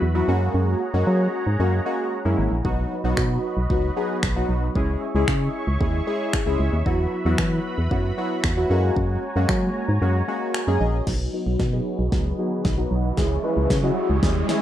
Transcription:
Already playing: supersaw synth F#4 B4 E5 B5
0.02 fm bass E2
0.15 synth keys F#3 B3 E4 F#4
0.28 fm bass F#2, synth keys G#3 A#3 C#4 F#4, supersaw synth G#4 C#5 F#5 A#5
0.54 fm bass F#2
0.94 fm bass F#2, synth keys G#3 A#3 C#4 F#4
1.07 fm bass F#3
1.47 fm bass G#2
1.59 fm bass F#2, synth keys G#3 A#3 C#4 F#4
1.85 synth keys G#3 A#3 C#4 F#4
2.25 fm bass F#2, synth keys G#3 A#3 C#4 E4
2.38 fm bass G#1
2.52 fm bass A#1
2.65 fm bass B1, synth keys F#3 B3 D#4 F#4, supersaw synth F#4 B4 D#5 B5, kick
3.04 fm bass B1, synth keys F#3 B3 D#4 F#4
3.17 fm bass B2, finger snap, kick
3.57 fm bass B1
3.70 fm bass C#2, synth keys F#3 B3 D#4 F#4, kick
3.96 synth keys F#3 B3 D#4 G#4
4.23 fm bass B1, finger snap, kick
4.36 synth keys F#3 B3 D#4 F#4
4.49 fm bass B1
4.75 fm bass C#2, synth keys G#3 C#4 E4 G#4, supersaw synth G#4 C#5 E5 C#6, kick
5.15 fm bass C#2, synth keys G#3 C#4 E4 G#4
5.28 fm bass C#3, finger snap, kick
5.67 fm bass C#2
5.81 fm bass D#2, synth keys G#3 C#4 E4 G#4, kick
6.07 synth keys G#3 C#4 E4 G#4
6.33 finger snap, kick
6.46 fm bass C#2, synth keys G#3 C#4 E4 G#4
6.59 fm bass C#2
6.73 fm bass D#2
6.86 fm bass E2, synth keys F#3 B3 E4 F#4, supersaw synth F#4 B4 B5, kick
7.25 fm bass E2, synth keys F#3 B3 E4 F#4
7.38 fm bass E3, finger snap, kick
7.78 fm bass E2
7.91 fm bass F#2, synth keys F#3 B3 E4 F#4, kick
8.18 synth keys F#3 B3 E4 F#4
8.44 fm bass E2, finger snap, kick
8.57 synth keys F#3 B3 E4 F#4
8.70 fm bass F#2, synth keys G#3 A#3 C#4 F#4, supersaw synth C#5 G#5 A#5
8.96 fm bass F#2, kick
9.36 fm bass F#2, synth keys G#3 A#3 C#4 F#4
9.49 fm bass F#3, finger snap, kick
9.89 fm bass G#2
10.02 fm bass F#2, synth keys G#3 A#3 C#4 F#4
10.28 synth keys G#3 A#3 C#4 F#4
10.54 synth keys G#5, finger snap
10.67 fm bass F#2, synth keys G#3 A#3 C#4 G#4
10.81 fm bass A#1, synth keys D#5
11.07 fm bass B1, synth keys F#3 B3 D#4 F#4, supersaw synth F#4 B4 D#5 B5, kick, snare, crash, riser
11.33 synth keys F#3 B3 D#4 F#4
11.47 fm bass B1
11.60 fm bass B2, kick, snare
11.73 synth keys F#3 B3 D#4 G#4
11.99 fm bass B1
12.12 fm bass C#2, synth keys F#3 B3 D#4 G#4, kick, snare
12.38 synth keys F#3 B3 D#4 G#4
12.65 fm bass B1, kick, snare
12.78 synth keys F#3 B3 D#4 F#4
12.91 fm bass B1
13.17 fm bass C#2, synth keys G#3 C#4 E4 G#4, supersaw synth G#4 C#5 E5 C#6, kick, snare
13.44 synth keys G#3 C#4 E4 B4
13.57 fm bass C#2
13.70 fm bass C#3, kick, snare
13.83 synth keys G#3 C#4 E4 F#4
14.10 fm bass C#2
14.23 fm bass D#2, synth keys G#3 C#4 E4 G#4, kick, snare
14.49 synth keys G#3 C#4 E4 G#4 E5, snare

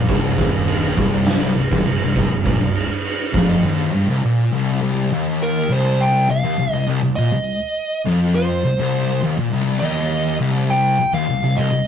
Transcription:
0.09 fingered electric bass C1, distorted electric guitar C2, kick, crash
0.38 fingered electric bass D#1, distorted electric guitar D#2, kick, crash
0.68 crash
0.98 fingered electric bass C1, distorted electric guitar C2, kick, crash
1.26 snare, crash
1.57 fingered electric bass C1, distorted electric guitar C2, crash
1.72 fingered electric bass D#1, distorted electric guitar D#2, kick
1.86 fingered electric bass C1, distorted electric guitar C2, crash
1.99 fingered electric bass C1, distorted electric guitar C2
2.04 distorted electric guitar C2
2.14 fingered electric bass C1, distorted electric guitar C2, kick, crash
2.19 distorted electric guitar C2
2.31 fingered electric bass C1, distorted electric guitar C2
2.46 fingered electric bass A#1, distorted electric guitar A#2, kick, crash
2.61 fingered electric bass C1, distorted electric guitar C2
2.75 crash
3.04 crash
3.34 fingered electric bass F1, distorted electric guitar F2, kick, crash
3.65 distorted electric guitar D#2
3.94 distorted electric guitar G2
4.09 distorted electric guitar C2
4.24 distorted electric guitar A#2
4.53 distorted electric guitar C2
4.82 distorted electric guitar C2
5.12 distorted electric guitar D#2
5.43 lead electric guitar A#4
5.71 distorted electric guitar C2, lead electric guitar C5
6.01 lead electric guitar G5
6.30 distorted electric guitar C2, lead electric guitar F5
6.44 distorted electric guitar D#2
6.59 distorted electric guitar C2
6.73 distorted electric guitar C2, lead electric guitar D#5
6.88 distorted electric guitar C2
7.03 distorted electric guitar C2
7.16 distorted electric guitar A#2, lead electric guitar D#5
7.33 distorted electric guitar C2
8.07 distorted electric guitar F2
8.35 lead electric guitar C5
8.65 distorted electric guitar C2
8.79 distorted electric guitar C2
9.24 distorted electric guitar D#2
9.39 distorted electric guitar A#2
9.53 distorted electric guitar C2
9.80 distorted electric guitar D#2, lead electric guitar D#5
10.41 distorted electric guitar C2
10.70 lead electric guitar G5
11.00 distorted electric guitar C2
11.14 distorted electric guitar D#2, lead electric guitar F5
11.29 distorted electric guitar C2
11.44 distorted electric guitar C2
11.57 distorted electric guitar C2, lead electric guitar D#5
11.72 distorted electric guitar C2

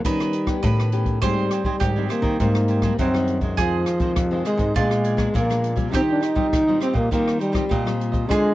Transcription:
0.04 nylon-string guitar D#3 B3 C#4 G4, trombone G3, mandolin B4, kick, closed hi-hat
0.20 cross-stick, closed hi-hat
0.33 closed hi-hat
0.46 nylon-string guitar B3 C#4 G4, kick, cross-stick
0.63 nylon-string guitar A2 D#3, mandolin B4, kick, closed hi-hat
0.80 cross-stick, closed hi-hat
0.92 nylon-string guitar B3 C#4 G4, closed hi-hat
1.06 kick, closed hi-hat
1.22 nylon-string guitar G#2 G3 C4 D#4, trombone G3, cavaquinho G4 C5 D#5 G#5, mandolin C5, kick, cross-stick, closed hi-hat
1.51 cavaquinho G4 C5 D#5 G#5, cross-stick, closed hi-hat
1.65 nylon-string guitar G3 C4 D#4, cavaquinho G4 C5 D#5 G#5, kick
1.80 nylon-string guitar G#2 D#3, mandolin G4, kick, cross-stick, closed hi-hat
1.96 nylon-string guitar G3 C4 D#4, cavaquinho C5 D#5 G#5
2.09 trombone A#3, cavaquinho G4 C5 D#5 G#5, cross-stick, closed hi-hat
2.22 nylon-string guitar D#3, cavaquinho C5 D#5 G#5, kick, closed hi-hat
2.40 nylon-string guitar G#2 G3 C4 D#4, trombone A#3, cavaquinho G4 C5 D#5 G#5, kick, closed hi-hat
2.55 cross-stick
2.68 cavaquinho G4 C5 D#5 G#5, closed hi-hat
2.82 nylon-string guitar G3 C4 D#4, cavaquinho G4 C5 D#5 G#5, kick, cross-stick, closed hi-hat
2.98 nylon-string guitar F#2 D#3, trombone C4, cavaquinho G4 C5 D#5 G#5, kick, closed hi-hat
3.14 nylon-string guitar G3 C4 D#4, cavaquinho C5 D#5 G#5, cross-stick
3.28 closed hi-hat
3.41 nylon-string guitar D#3 G#3 C4, cavaquinho C5 D#5 G#5, kick, closed hi-hat
3.57 nylon-string guitar F2, trombone F3, cavaquinho F4 G#4 C5 D#5, mandolin G#4, kick, cross-stick, closed hi-hat
3.86 cavaquinho F4 G#4 C5 D#5, cross-stick, closed hi-hat
3.99 nylon-string guitar D#3 G#3 C4, cavaquinho F4 G#4 C5 D#5, kick, closed hi-hat
4.16 nylon-string guitar F2 C3, kick, cross-stick, closed hi-hat
4.31 nylon-string guitar D#3 G#3 C4, cavaquinho G#4 C5 D#5
4.45 trombone G#3, cavaquinho F4 G#4 C5 D#5, cross-stick, closed hi-hat
4.57 nylon-string guitar G#2, cavaquinho G#4 C5 D#5, kick, closed hi-hat
4.74 nylon-string guitar A#2 G#3 B3 D4, trombone G#3, cavaquinho D4 A#4 D5 G#5, mandolin F4, kick, closed hi-hat
4.91 cross-stick, closed hi-hat
5.04 cavaquinho D4 A#4 D5 G#5, closed hi-hat
5.17 nylon-string guitar G#3 B3 D4, cavaquinho D4 A#4 D5 G#5, kick, cross-stick
5.34 nylon-string guitar A#2 F3, trombone A#3, cavaquinho D4 A#4 D5 G#5, kick, closed hi-hat
5.49 nylon-string guitar G#3 B3 D4, cavaquinho A#4 D5 G#5, cross-stick, closed hi-hat
5.64 closed hi-hat
5.76 nylon-string guitar G3 C4 F4, cavaquinho A#4 D5 G#5, kick, closed hi-hat
5.91 nylon-string guitar D#3, trombone C4, cavaquinho D#4 G4 C5 D#5, mandolin G4, kick, cross-stick, closed hi-hat
6.11 trombone D4
6.21 cavaquinho D#4 G4 C5 D#5, trombone D#4, cross-stick, closed hi-hat
6.35 nylon-string guitar G3 C4 F4, cavaquinho D#4 G4 C5 D#5, kick
6.53 nylon-string guitar A#2 D#3, kick, cross-stick, closed hi-hat
6.67 nylon-string guitar G3 C4 F4, cavaquinho G4 C5 D#5
6.81 trombone C4, cavaquinho D#4 G4 C5 D#5, cross-stick, closed hi-hat
6.94 nylon-string guitar A#2, trombone A#3, cavaquinho G4 C5 D#5, kick, closed hi-hat
7.11 nylon-string guitar D#3 G3 C4 F4, trombone A#3, cavaquinho D#4 G4 C5 D#5, kick, closed hi-hat
7.28 cross-stick
7.39 trombone G3, cavaquinho D#4 G4 C5 D#5, closed hi-hat
7.52 nylon-string guitar G3 C4 F4, cavaquinho D#4 G4 C5 D#5, kick, cross-stick, closed hi-hat
7.69 nylon-string guitar A#2, cavaquinho D#4 G4 C5 D#5, kick, closed hi-hat
7.85 nylon-string guitar G3 C4 F4, cavaquinho G4 C5 D#5, cross-stick
8.01 closed hi-hat
8.12 cavaquinho G4 C5 D#5, kick, closed hi-hat
8.29 nylon-string guitar D3 G#3 C4 F4, trombone G#3, cavaquinho F4 G#4 C5 D5, mandolin G#4, kick, cross-stick, closed hi-hat

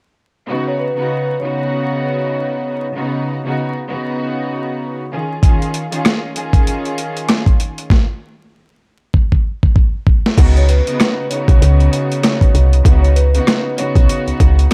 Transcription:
0.47 string section C#3 B3 D#4 F#4
0.68 vibraphone C#5
0.79 vibraphone B4
0.96 string section C#3 B3 D#4 F#4
1.40 string section C#3 B3 D#4 F#4, vibraphone C#5
2.02 vibraphone C#5
2.94 string section C#3 B3 D#4 F#4
3.44 string section C#3 B3 D#4 F#4
3.87 string section C#3 B3 D#4 F#4
5.11 string section D#3 C#4 F4 G#4
5.40 string section D#3 C#4 F4 G#4, kick, closed hi-hat
5.62 closed hi-hat
5.74 closed hi-hat
5.90 string section D#3 C#4 F4 G#4, closed hi-hat
6.05 cross-stick, snare, closed hi-hat
6.35 string section D#3 C#4 F4 G#4, closed hi-hat
6.53 kick, closed hi-hat
6.67 closed hi-hat
6.85 closed hi-hat
6.98 closed hi-hat
7.17 closed hi-hat
7.29 cross-stick, snare, closed hi-hat
7.46 kick, closed hi-hat
7.60 closed hi-hat
7.78 closed hi-hat
7.90 kick, snare
9.14 kick
9.32 kick
9.63 kick
9.76 kick
10.07 kick
10.26 snare
10.37 fm bass C#2, string section C#3 B3 D#4 F#4, kick, closed hi-hat, crash
10.57 vibraphone C#5, closed hi-hat
10.68 vibraphone B4, closed hi-hat
10.85 string section C#3 B3 D#4 F#4, closed hi-hat
11.00 cross-stick, snare, closed hi-hat
11.29 string section C#3 B3 D#4 F#4, vibraphone C#5, closed hi-hat
11.48 fm bass B1, kick, closed hi-hat
11.62 fm bass C#2, closed hi-hat
11.80 closed hi-hat
11.92 vibraphone C#5, closed hi-hat
12.12 closed hi-hat
12.23 cross-stick, snare, closed hi-hat
12.41 kick, closed hi-hat
12.54 fm bass C2, closed hi-hat
12.73 closed hi-hat
12.83 fm bass C#2, string section C#3 B3 D#4 F#4, kick, closed hi-hat
13.02 vibraphone C#5, closed hi-hat
13.15 vibraphone B4, closed hi-hat
13.34 string section C#3 B3 D#4 F#4, closed hi-hat
13.47 cross-stick, snare, closed hi-hat
13.77 string section C#3 B3 D#4 F#4, vibraphone C#5, closed hi-hat
13.96 fm bass B1, kick, closed hi-hat
14.09 closed hi-hat
14.28 fm bass C#2, closed hi-hat
14.40 fm bass C#2, kick, closed hi-hat
14.59 closed hi-hat

